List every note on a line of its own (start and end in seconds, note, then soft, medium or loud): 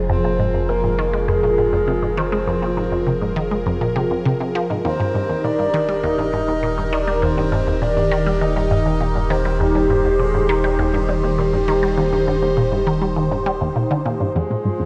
0.00 4.82 F1 medium
0.00 4.81 F3 medium
0.00 4.81 F4 medium
0.00 4.81 G#4 medium
0.09 0.22 F2 medium
0.09 9.56 A#4 medium
0.09 0.71 C5 loud
0.24 0.37 A#2 medium
0.39 0.48 G#2 medium
0.54 0.59 F2 medium
0.69 0.74 C3 medium
0.69 1.30 A#4 loud
0.84 0.92 G#2 medium
0.99 1.04 D#3 medium
1.13 1.26 G#3 medium
1.28 1.41 F2 loud
1.28 2.19 G#4 medium
1.43 1.56 A#2 medium
1.58 1.67 G#2 medium
1.73 1.78 F2 medium
1.88 1.93 C3 medium
2.03 2.11 G#2 medium
2.17 2.23 D#3 loud
2.17 3.36 C5 medium
2.32 2.45 G#3 medium
2.47 2.60 F2 loud
2.62 2.75 A#2 medium
2.77 2.85 G#2 medium
2.92 2.97 F2 medium
3.07 3.12 C3 medium
3.22 3.30 G#2 medium
3.36 3.41 D#3 medium
3.51 3.64 G#3 medium
3.66 3.79 F2 medium
3.81 3.94 A#2 medium
3.96 4.04 C3 medium
4.11 4.16 F2 medium
4.25 4.34 C3 loud
4.40 4.49 C3 medium
4.55 4.68 F3 medium
4.70 4.83 G#2 medium
4.85 14.32 D#1 medium
4.85 4.98 D#2 loud
4.85 14.31 D#3 medium
4.85 14.31 D#4 medium
4.85 14.31 G4 medium
4.85 5.46 C5 loud
5.00 5.12 G2 medium
5.15 5.23 G2 medium
5.29 5.34 D#2 medium
5.44 5.49 A#2 medium
5.44 6.05 D5 loud
5.59 5.68 G2 medium
5.74 5.87 D#3 medium
5.89 6.01 G3 medium
6.03 6.16 D#2 loud
6.03 6.94 D#5 loud
6.18 6.31 G2 medium
6.33 6.42 G2 medium
6.48 6.53 D#2 medium
6.63 6.68 A#2 medium
6.78 6.86 G2 medium
6.93 7.05 D#3 medium
6.93 7.22 D5 loud
7.07 7.20 G3 medium
7.22 7.35 D#2 loud
7.22 7.84 C5 loud
7.37 7.50 G2 medium
7.52 7.61 G2 medium
7.67 7.72 D#2 medium
7.82 7.87 A#2 medium
7.82 8.43 D5 loud
7.97 8.05 G2 medium
8.11 8.24 D#3 medium
8.26 8.39 G3 medium
8.41 8.54 D#2 loud
8.41 9.30 D#5 loud
8.56 8.69 G2 medium
8.71 8.79 G2 medium
8.86 8.91 D#2 medium
9.00 9.06 A#2 medium
9.15 9.24 G2 medium
9.30 9.43 D#3 medium
9.30 9.58 C5 medium
9.45 9.58 G3 medium
9.60 9.73 D#2 medium
9.60 10.16 G4 loud
9.60 14.31 C5 medium
9.75 9.88 G2 medium
9.90 9.98 G2 medium
10.05 10.10 D#2 medium
10.19 10.25 A#2 medium
10.19 10.51 G#4 medium
10.34 10.43 G2 medium
10.49 10.62 D#3 loud
10.49 13.76 G4 loud
10.64 10.77 G3 medium
10.79 10.92 D#2 loud
10.94 11.06 G2 medium
11.09 11.17 G2 medium
11.23 11.29 D#2 medium
11.38 11.43 A#2 medium
11.53 11.62 G2 medium
11.68 11.81 D#3 loud
11.83 11.95 G3 medium
11.98 12.10 D#2 loud
12.12 12.25 G2 medium
12.27 12.36 G2 medium
12.42 12.47 D#2 medium
12.57 12.62 A#2 medium
12.72 12.80 G2 medium
12.87 12.99 D#3 medium
13.02 13.14 G3 medium
13.16 13.29 D#2 loud
13.31 13.44 G2 medium
13.46 13.51 G3 loud
13.61 13.70 D#2 loud
13.76 13.84 A#2 medium
13.91 13.99 D3 medium
14.05 14.18 A#2 loud
14.20 14.26 G2 medium
14.35 14.86 F1 medium
14.35 14.48 F2 loud
14.35 14.86 F3 medium
14.35 14.86 F4 medium
14.35 14.86 G#4 medium
14.35 14.86 G#4 loud
14.35 14.86 C5 loud
14.50 14.63 A#2 medium
14.65 14.73 G#2 medium
14.80 14.85 F2 medium